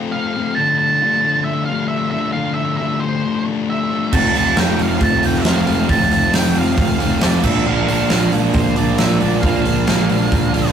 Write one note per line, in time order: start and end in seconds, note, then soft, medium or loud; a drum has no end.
0.00 0.37 F3 medium
0.00 0.36 A3 medium
0.00 0.34 C4 medium
0.12 0.58 F5 loud
0.36 0.58 F3 medium
0.36 0.58 A3 medium
0.36 0.57 C4 medium
0.55 1.01 D3 loud
0.55 1.02 F3 loud
0.55 1.03 A3 loud
0.55 0.77 A5 loud
0.59 1.03 D4 loud
0.78 1.42 A5 loud
1.02 2.34 D3 loud
1.02 1.27 F3 loud
1.02 1.26 A3 loud
1.02 1.24 D4 loud
1.25 1.70 F3 medium
1.25 1.69 A3 medium
1.25 1.68 D4 medium
1.44 1.65 E5 loud
1.65 2.12 D4 medium
1.65 1.88 F5 medium
1.70 2.15 F3 medium
1.70 2.14 A3 medium
1.88 2.10 E5 medium
2.11 2.36 A3 medium
2.11 2.36 D4 medium
2.11 2.32 E5 loud
2.15 2.35 F3 medium
2.33 2.78 D3 loud
2.33 2.80 F3 loud
2.33 2.81 A3 loud
2.33 2.54 F5 loud
2.37 2.80 D4 loud
2.54 2.76 E5 medium
2.77 3.24 D3 loud
2.77 3.03 F3 loud
2.77 3.02 A3 loud
2.77 3.01 D4 loud
2.77 2.99 E5 medium
3.00 3.47 F3 medium
3.00 3.46 A3 medium
3.00 3.45 D4 medium
3.00 3.42 C5 medium
3.46 3.92 F3 medium
3.46 3.92 A3 medium
3.46 3.90 D4 medium
3.70 4.15 E5 loud
3.91 4.13 F3 medium
3.91 4.13 A3 medium
3.91 4.11 D4 medium
4.12 4.30 F1 medium
4.12 4.56 F2 loud
4.12 4.56 C3 loud
4.12 4.57 F3 loud
4.12 4.58 A3 loud
4.12 4.58 C4 loud
4.12 4.34 F4 loud
4.12 4.36 A5 loud
4.12 kick loud
4.12 crash loud
4.35 4.52 F1 medium
4.35 4.58 F3 medium
4.35 4.59 A3 medium
4.35 4.59 C4 medium
4.35 4.60 F4 medium
4.35 4.57 A5 loud
4.35 open hi-hat medium
4.57 4.74 F1 loud
4.57 5.01 F2 loud
4.57 5.01 C3 loud
4.57 4.80 F3 loud
4.57 4.79 A3 loud
4.57 4.78 C4 loud
4.57 5.22 F4 loud
4.57 4.79 G5 loud
4.57 snare loud
4.57 open hi-hat medium
4.79 4.96 F1 medium
4.79 5.25 F3 medium
4.79 5.23 A3 medium
4.79 5.22 C4 medium
4.79 5.03 F5 medium
4.79 open hi-hat medium
5.01 5.19 F1 medium
5.01 5.23 A5 loud
5.01 kick loud
5.01 open hi-hat medium
5.22 5.40 F1 medium
5.22 5.68 F3 medium
5.22 5.67 A3 medium
5.22 5.65 C4 medium
5.22 5.48 F4 medium
5.22 5.40 G5 loud
5.22 open hi-hat medium
5.35 5.45 E5 medium
5.35 snare soft
5.45 5.62 F1 medium
5.45 5.70 F3 medium
5.45 5.68 A3 medium
5.45 5.67 C4 medium
5.45 5.66 F4 medium
5.45 5.91 F5 medium
5.45 snare loud
5.45 open hi-hat medium
5.67 5.85 F1 medium
5.67 5.89 F3 medium
5.67 5.88 A3 medium
5.67 5.89 C4 medium
5.67 5.91 F4 medium
5.67 open hi-hat medium
5.88 6.07 F1 loud
5.88 6.32 F2 medium
5.88 6.32 C3 medium
5.88 6.34 F3 loud
5.88 6.34 A3 loud
5.88 6.34 C4 loud
5.88 6.10 F4 loud
5.88 6.12 A5 loud
5.88 kick loud
5.88 open hi-hat medium
6.10 6.29 F1 medium
6.10 6.33 F3 medium
6.10 6.33 A3 medium
6.10 6.33 C4 medium
6.10 6.35 F4 medium
6.10 6.34 A5 loud
6.10 open hi-hat medium
6.33 6.51 F1 loud
6.33 6.78 F2 loud
6.33 6.78 C3 loud
6.33 6.57 F3 loud
6.33 6.55 A3 loud
6.33 6.54 C4 loud
6.33 6.98 F4 loud
6.33 6.57 G5 loud
6.33 snare loud
6.33 open hi-hat loud
6.56 6.73 F1 medium
6.56 7.02 F3 medium
6.56 7.00 A3 medium
6.56 6.99 C4 medium
6.56 6.78 F5 medium
6.56 open hi-hat medium
6.78 6.95 F1 medium
6.78 7.22 F5 loud
6.78 kick loud
6.78 open hi-hat medium
6.98 7.17 F1 medium
6.98 7.45 F3 medium
6.98 7.44 A3 medium
6.98 7.43 C4 medium
6.98 7.24 F4 medium
6.98 open hi-hat medium
7.21 7.40 F1 medium
7.21 7.46 F3 medium
7.21 7.43 A3 medium
7.21 7.44 C4 medium
7.21 7.43 F4 medium
7.21 7.43 D5 medium
7.21 snare loud
7.21 open hi-hat loud
7.43 7.62 A#1 medium
7.43 7.65 A#2 medium
7.43 7.66 F3 medium
7.43 7.67 A#3 medium
7.43 7.67 D4 loud
7.43 7.70 F4 medium
7.43 7.67 E5 medium
7.43 kick loud
7.43 crash loud
7.66 7.84 A#1 loud
7.66 8.10 A#2 medium
7.66 8.10 F3 loud
7.66 8.11 A#3 loud
7.66 8.12 D4 loud
7.66 7.87 F5 loud
7.70 7.88 F4 loud
7.88 8.06 A#1 medium
7.88 8.11 A#3 medium
7.88 8.12 D4 medium
7.88 8.12 F4 medium
7.88 8.30 F5 medium
7.88 open hi-hat medium
8.10 8.28 A#1 loud
8.10 9.42 A#2 loud
8.10 8.33 F3 loud
8.10 8.33 A#3 loud
8.10 8.32 D4 loud
8.10 8.76 F4 loud
8.10 snare loud
8.10 open hi-hat loud
8.32 8.50 A#1 medium
8.32 8.78 F3 medium
8.32 8.76 A#3 medium
8.32 8.75 D4 medium
8.32 open hi-hat medium
8.54 8.72 A#1 loud
8.54 8.75 C5 medium
8.54 kick loud
8.54 open hi-hat medium
8.76 8.95 A#1 medium
8.76 9.22 F3 medium
8.76 9.21 A#3 medium
8.76 9.19 D4 medium
8.76 9.02 F4 medium
8.76 8.98 D5 medium
8.76 open hi-hat medium
8.98 9.16 A#1 medium
8.98 9.43 F3 medium
8.98 9.23 A#3 medium
8.98 9.21 D4 medium
8.98 9.20 F4 loud
8.98 9.20 E5 loud
8.98 snare loud
8.98 open hi-hat medium
9.20 9.39 A#1 medium
9.20 9.42 F3 medium
9.20 9.42 A#3 medium
9.20 9.43 D4 medium
9.20 9.45 F4 medium
9.20 9.41 D5 loud
9.20 open hi-hat medium
9.42 9.61 A#1 medium
9.42 9.86 A#2 loud
9.42 9.87 F3 medium
9.42 9.88 A#3 loud
9.42 9.89 D4 loud
9.42 10.72 F5 loud
9.42 kick loud
9.42 open hi-hat medium
9.46 9.63 F4 loud
9.64 9.83 A#1 loud
9.64 9.87 A#3 medium
9.64 9.88 D4 medium
9.64 9.89 F4 medium
9.64 open hi-hat medium
9.87 10.05 A#1 loud
9.87 10.32 A#2 loud
9.87 10.11 F3 loud
9.87 10.10 A#3 loud
9.87 10.09 D4 loud
9.87 10.52 F4 loud
9.87 snare loud
9.87 open hi-hat medium
10.10 10.27 A#1 medium
10.10 10.55 F3 medium
10.10 10.54 A#3 medium
10.10 10.53 D4 medium
10.10 open hi-hat medium
10.32 10.50 A#1 loud
10.32 kick loud
10.32 open hi-hat medium
10.53 10.72 A#1 medium
10.53 10.72 F3 medium
10.53 10.72 A#3 medium
10.53 10.72 D4 medium
10.53 10.72 F4 medium
10.53 open hi-hat medium
10.66 snare soft